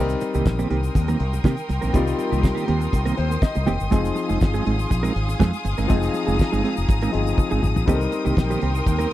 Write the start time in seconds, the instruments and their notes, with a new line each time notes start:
Already playing: fretless electric bass C2, clean electric guitar D#3, grand piano G3 C4 D#4, string section A#4 G5 C6 D#6
0.00 grand piano A#4
0.09 muted clean electric guitar stroke, closed hi-hat, shaker
0.21 muted clean electric guitar stroke, closed hi-hat, shaker
0.34 fretless electric bass C2, clean electric guitar D#3 A#3 C4 G4, closed hi-hat, shaker
0.46 fretless electric bass A#1, muted clean electric guitar stroke, kick, snare, shaker
0.59 clean electric guitar D#3 A#3 C4 G4, closed hi-hat, shaker
0.70 fretless electric bass C2, clean electric guitar D#3 A#3 C4 G4, closed hi-hat
0.83 muted clean electric guitar stroke, closed hi-hat, shaker
0.95 fretless electric bass D#2, muted clean electric guitar stroke, kick, closed hi-hat, shaker
1.08 clean electric guitar D#3 A#3 C4 A#4, closed hi-hat, shaker
1.20 fretless electric bass C2, closed hi-hat
1.33 muted clean electric guitar stroke, closed hi-hat, shaker
1.44 fretless electric bass C3, clean electric guitar D#3 A#3 C4 G4, kick, snare, shaker
1.57 muted clean electric guitar stroke, closed hi-hat, shaker
1.69 fretless electric bass C2, muted clean electric guitar stroke, snare, closed hi-hat, shaker
1.81 fretless electric bass A#1, clean electric guitar D#3 A#3 C4 A#4, closed hi-hat, shaker
1.93 fretless electric bass C2, clean electric guitar D#3 A#3 C4 G4, grand piano G3 C4 D#4 F4, kick, closed hi-hat, shaker
2.07 muted clean electric guitar stroke, closed hi-hat, shaker
2.18 muted clean electric guitar stroke, closed hi-hat, shaker
2.32 fretless electric bass C2, clean electric guitar D#3 A#3 C4 G4, closed hi-hat, shaker
2.43 kick, snare, shaker
2.55 clean electric guitar D#3 A#3 C4 G4, closed hi-hat, shaker
2.67 fretless electric bass D#2, clean electric guitar D#3 A#3 C4 G4, closed hi-hat
2.81 closed hi-hat, shaker
2.93 fretless electric bass C2, muted clean electric guitar stroke, kick, closed hi-hat, shaker
3.06 clean electric guitar D#3 A#3 C4 A#4, closed hi-hat, shaker
3.17 fretless electric bass D#2, grand piano C5, closed hi-hat
3.31 muted clean electric guitar stroke, closed hi-hat, shaker
3.42 grand piano D#5, kick, snare, shaker
3.55 fretless electric bass C2, muted clean electric guitar stroke, closed hi-hat, shaker
3.66 fretless electric bass F1, clean electric guitar D#3 A#3 C4 G4, grand piano G5, closed hi-hat, shaker
3.80 fretless electric bass G1, muted clean electric guitar stroke, closed hi-hat, shaker
3.90 fretless electric bass F1, grand piano F3 C4 D#4 G#4, clean electric guitar G#3 C4 D#4 G#4, string section G#4 F5, kick, closed hi-hat, shaker
4.04 muted clean electric guitar stroke, closed hi-hat, shaker
4.15 muted clean electric guitar stroke, closed hi-hat, shaker
4.29 fretless electric bass F1, clean electric guitar G#3 C4 D#4 G#4, closed hi-hat, shaker
4.41 fretless electric bass G1, muted clean electric guitar stroke, kick, snare, shaker
4.54 clean electric guitar G#3 C4 D#4 G#4, closed hi-hat, shaker
4.66 fretless electric bass G#1, clean electric guitar G#3 C4 D#4 G#4, closed hi-hat
4.79 muted clean electric guitar stroke, closed hi-hat, shaker
4.90 fretless electric bass A#1, muted clean electric guitar stroke, kick, closed hi-hat, shaker
5.03 clean electric guitar G#3 C4 D#4 A#4, closed hi-hat, shaker
5.15 fretless electric bass G#1, muted clean electric guitar stroke, closed hi-hat
5.28 muted clean electric guitar stroke, closed hi-hat, shaker
5.40 fretless electric bass F2, clean electric guitar G#3 C4 D#4 G#4, kick, snare, shaker
5.53 muted clean electric guitar stroke, closed hi-hat, shaker
5.64 fretless electric bass G1, muted clean electric guitar stroke, closed hi-hat, shaker
5.78 fretless electric bass G1, clean electric guitar G#3 C4 D#4 A#4, closed hi-hat, shaker
5.87 fretless electric bass F1, grand piano F3 C4 D#4 G#4, clean electric guitar G#3 C4 D#4 G#4, string section A#5, kick, closed hi-hat, shaker
6.02 muted clean electric guitar stroke, closed hi-hat, shaker
6.14 muted clean electric guitar stroke, closed hi-hat, shaker
6.27 fretless electric bass F1, clean electric guitar G#3 C4 D#4 G#4, closed hi-hat, shaker
6.39 muted clean electric guitar stroke, kick, snare, shaker
6.52 fretless electric bass G1, clean electric guitar G#3 C4 D#4 G#4, closed hi-hat, shaker
6.64 clean electric guitar G#3 C4 D#4 G#4, closed hi-hat
6.77 fretless electric bass F1, muted clean electric guitar stroke, closed hi-hat, shaker
6.89 fretless electric bass G#1, muted clean electric guitar stroke, kick, closed hi-hat, shaker
7.01 clean electric guitar G#3 C4 D#4 A#4, closed hi-hat, shaker
7.12 fretless electric bass G1, grand piano F3 C4 D#4 G#4, muted clean electric guitar stroke, closed hi-hat
7.27 muted clean electric guitar stroke, closed hi-hat, shaker
7.38 muted clean electric guitar stroke, kick, high tom, shaker
7.51 fretless electric bass G#1, clean electric guitar G#3 C4 D#4 G#4, shaker
7.63 fretless electric bass G#1, muted clean electric guitar stroke, mid tom, shaker
7.76 fretless electric bass A#1, muted clean electric guitar stroke, floor tom, shaker
7.86 fretless electric bass C2, clean electric guitar D#3 A#3 C4 G4, grand piano G3 C4 D#4 A4, string section A#4 G5 C6, kick, closed hi-hat, shaker
7.94 grand piano A#4
8.01 muted clean electric guitar stroke, closed hi-hat, shaker
8.12 muted clean electric guitar stroke, closed hi-hat, shaker
8.25 fretless electric bass C2, clean electric guitar D#3 A#3 C4 G4, closed hi-hat, shaker
8.37 fretless electric bass A#1, muted clean electric guitar stroke, kick, snare, shaker
8.50 clean electric guitar D#3 A#3 C4 G4, closed hi-hat, shaker
8.61 fretless electric bass C2, clean electric guitar D#3 A#3 C4 G4, closed hi-hat
8.74 closed hi-hat, shaker
8.86 fretless electric bass D#2, muted clean electric guitar stroke, kick, closed hi-hat, shaker
8.99 clean electric guitar D#3 A#3 C4 A#4, closed hi-hat, shaker